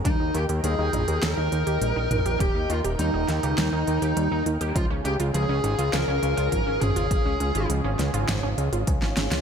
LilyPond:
<<
  \new Staff \with { instrumentName = "Lead electric guitar" } { \time 4/4 \key ees \mixolydian \tempo 4 = 102 ees'8 g'8 aes'4 bes'2 | g'8 f'8 ees'2~ ees'8 r8 | f'8 g'8 aes'4 bes'4. aes'8~ | aes'4 r2. | }
  \new Staff \with { instrumentName = "Analog synth pad" } { \time 4/4 \key ees \mixolydian <ees ees' bes' g''>1~ | <ees ees' bes' g''>1 | <des des' f' aes'>1~ | <des des' f' aes'>1 | }
  \new Staff \with { instrumentName = "Synth arpeggio sound" } { \time 4/4 \key ees \mixolydian g16 ees'16 ees'16 g'16 g16 ees'16 ees'16 g'16 g16 ees'16 ees'16 g'16 g16 ees'16 ees'16 g'16 | g16 ees'16 ees'16 g'16 g16 ees'16 ees'16 g'16 g16 ees'16 ees'16 g'16 g16 ees'16 ees'16 g'16 | f16 des'16 des'16 f'16 f16 des'16 des'16 f'16 f16 des'16 des'16 f'16 f16 des'16 des'16 f'16 | f16 des'16 des'16 f'16 f16 des'16 des'16 f'16 f16 des'16 des'16 f'16 f16 des'16 des'16 f'16 | }
  \new Staff \with { instrumentName = "Analog synth bass" } { \clef bass \time 4/4 \key ees \mixolydian ees,16 ees,16 ees,16 ees,16 ees,16 ees,16 bes,,16 ees,16 ees,16 ees,16 ees,16 ees,16 bes,,16 bes,,16 bes,,16 bes,,16 | ees,,16 ees,16 ees,16 ees,,16 ees,16 ees,,16 ees,16 des,16 ees,16 ees,16 ees,16 ees,16 ees,16 ees,16 ees,16 ees,16 | des,16 des,16 des,16 des,16 des,16 des,16 aes,,16 des,16 des,16 des,16 des,16 des,16 aes,,16 aes,,16 aes,,16 aes,,16 | aes,,16 des,16 des,16 aes,,16 des,16 aes,,16 des,16 aes,,16 aes,,16 aes,,16 des,16 aes,,16 des,16 aes,,16 aes,,16 des,16 | }
  \new DrumStaff \with { instrumentName = "Drums" } \drummode { \time 4/4 <hh bd>8 hh16 hh16 hh8 <hh toml>16 hh16 <hh sn>8 hh16 hh16 hh8 <hh toml>16 hh16 | <hh bd>8 hh16 hh16 hh8 <hh sn>16 hh16 <hh sn>8 hh16 hh16 hh8 hh16 hh16 | <hh bd>8 hh16 hh16 hh8 hh16 hh16 <hh sn>8 hh16 hh16 <hh bd>8 <hh toml>16 hh16 | <hh bd>8 hh16 hh16 hh8 <hh sn>16 hh16 <hh sn toml>8 hh16 hh16 <hh bd>16 sn16 <hh sn>16 <hh sn>16 | }
>>